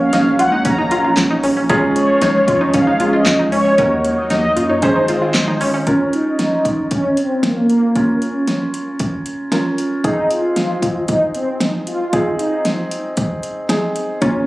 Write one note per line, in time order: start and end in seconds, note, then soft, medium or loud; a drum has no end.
0.00 1.67 F#3 medium
0.00 1.67 A#3 medium
0.00 1.65 C#4 medium
0.00 1.67 C#4 medium
0.00 1.65 F#4 medium
0.00 1.65 A#4 medium
0.00 0.40 F5 loud
0.13 0.41 A#1 loud
0.13 0.36 D#4 medium
0.13 snare loud
0.13 closed hi-hat medium
0.39 0.57 C#2 medium
0.39 0.50 F4 medium
0.39 0.63 F#5 medium
0.39 closed hi-hat medium
0.52 0.63 D#4 medium
0.65 0.84 A#1 loud
0.65 0.76 C#4 medium
0.65 1.40 A#5 loud
0.65 kick loud
0.65 closed hi-hat medium
0.78 0.90 D#4 medium
0.91 1.09 A#1 loud
0.91 1.03 F4 medium
0.91 closed hi-hat medium
1.04 1.27 F4 medium
1.17 1.35 A#1 loud
1.17 snare loud
1.17 clap loud
1.17 closed hi-hat medium
1.31 1.42 D#4 medium
1.43 1.62 A#1 loud
1.43 1.55 C#4 medium
1.43 open hi-hat medium
1.57 1.68 C#4 medium
1.69 2.06 C#2 loud
1.69 3.76 F3 medium
1.69 3.76 G#3 medium
1.69 2.97 C#4 medium
1.69 1.92 C#4 loud
1.69 3.76 C#4 medium
1.69 2.97 F4 medium
1.69 2.97 G#4 medium
1.69 kick loud
1.69 closed hi-hat medium
1.96 2.70 C#5 loud
1.96 closed hi-hat medium
2.22 2.40 C#2 loud
2.22 2.44 D#4 medium
2.22 snare loud
2.22 closed hi-hat medium
2.48 2.66 F2 medium
2.48 2.59 F4 medium
2.48 kick medium
2.48 closed hi-hat medium
2.61 2.72 D#4 medium
2.74 2.92 C#2 loud
2.74 2.85 C#4 medium
2.74 3.10 F5 loud
2.74 kick loud
2.74 closed hi-hat medium
2.87 2.98 D#4 medium
3.00 3.18 C#2 loud
3.00 3.78 C#4 medium
3.00 3.11 F4 medium
3.00 3.78 F4 soft
3.00 3.78 G#4 medium
3.00 closed hi-hat medium
3.13 3.36 F4 medium
3.13 3.53 D#5 loud
3.26 3.44 C#2 loud
3.26 snare loud
3.26 clap loud
3.26 closed hi-hat medium
3.39 3.50 D#4 medium
3.52 3.70 C#2 loud
3.52 3.63 C#4 medium
3.52 4.19 C#5 loud
3.52 open hi-hat medium
3.65 3.76 C#4 medium
3.78 4.15 D#2 loud
3.78 4.82 F#3 medium
3.78 4.82 A#3 medium
3.78 4.01 C#4 loud
3.78 4.80 D#4 medium
3.78 5.85 D#4 medium
3.78 4.80 F#4 medium
3.78 4.80 A#4 medium
3.78 kick loud
3.78 closed hi-hat medium
4.05 closed hi-hat medium
4.17 4.23 D#5 medium
4.30 4.49 D#2 loud
4.30 4.53 D#4 medium
4.30 4.71 D#5 loud
4.30 snare loud
4.30 closed hi-hat medium
4.56 4.75 F#2 medium
4.56 4.68 F4 medium
4.56 closed hi-hat medium
4.69 4.81 D#4 medium
4.69 4.75 C#5 medium
4.82 5.01 G#1 loud
4.82 5.86 G#3 medium
4.82 5.86 C4 medium
4.82 4.94 C#4 medium
4.82 5.85 D#4 medium
4.82 5.85 G#4 medium
4.82 5.85 C5 medium
4.82 5.31 C5 medium
4.82 kick loud
4.82 closed hi-hat medium
4.96 5.07 D#4 medium
5.08 5.27 G#1 medium
5.08 5.20 F4 medium
5.08 closed hi-hat medium
5.22 5.44 F4 medium
5.34 5.53 G#1 loud
5.34 snare loud
5.34 clap medium
5.34 closed hi-hat medium
5.48 5.59 D#4 medium
5.61 5.79 G#1 loud
5.61 5.72 C#4 medium
5.61 open hi-hat medium
5.74 5.85 C#4 medium
5.87 7.91 C#4 medium
5.87 6.11 C#4 loud
5.87 7.91 F4 medium
5.87 7.91 A#4 medium
5.87 kick medium
5.87 closed hi-hat medium
6.13 6.87 D#4 loud
6.13 closed hi-hat medium
6.39 snare loud
6.39 closed hi-hat medium
6.65 kick medium
6.65 closed hi-hat medium
6.91 7.15 C#4 loud
6.91 kick medium
6.91 closed hi-hat medium
7.17 7.44 C4 medium
7.17 closed hi-hat medium
7.43 7.68 A#3 medium
7.43 snare loud
7.43 closed hi-hat medium
7.69 8.18 A#3 loud
7.69 closed hi-hat medium
7.95 9.49 C#4 medium
7.95 9.49 F4 medium
7.95 9.49 A#4 medium
7.95 kick medium
7.95 closed hi-hat medium
8.21 8.70 C#4 medium
8.21 closed hi-hat medium
8.47 snare loud
8.47 closed hi-hat medium
8.74 closed hi-hat medium
8.99 kick medium
8.99 closed hi-hat medium
9.26 closed hi-hat medium
9.52 10.04 C#4 medium
9.52 10.04 F4 medium
9.52 10.04 A#4 medium
9.52 snare loud
9.52 closed hi-hat medium
9.78 closed hi-hat medium
10.04 12.09 C4 medium
10.04 10.31 D#4 loud
10.04 12.09 D#4 medium
10.04 12.09 G#4 medium
10.04 kick medium
10.04 closed hi-hat medium
10.30 11.05 F4 loud
10.30 closed hi-hat medium
10.56 snare loud
10.56 closed hi-hat medium
10.82 kick medium
10.82 closed hi-hat medium
11.08 11.33 D#4 loud
11.08 kick medium
11.08 closed hi-hat medium
11.35 11.59 C4 medium
11.35 closed hi-hat medium
11.60 11.73 D#4 medium
11.60 snare loud
11.60 closed hi-hat medium
11.87 12.41 F4 loud
11.87 closed hi-hat medium
12.13 13.66 C4 medium
12.13 13.66 D#4 medium
12.13 13.66 G#4 medium
12.13 kick medium
12.13 closed hi-hat medium
12.39 12.88 D#4 medium
12.39 closed hi-hat medium
12.65 snare loud
12.65 closed hi-hat medium
12.91 closed hi-hat medium
13.17 kick medium
13.17 closed hi-hat medium
13.43 closed hi-hat medium
13.69 14.22 C4 medium
13.69 14.22 D#4 soft
13.69 14.22 G#4 medium
13.69 snare loud
13.69 closed hi-hat medium
13.96 closed hi-hat medium
14.22 14.47 A#1 medium
14.22 14.47 A#3 medium
14.22 14.47 C#4 loud
14.22 14.44 C#4 medium
14.22 14.47 C#4 medium
14.22 14.47 F4 medium
14.22 kick medium
14.22 closed hi-hat medium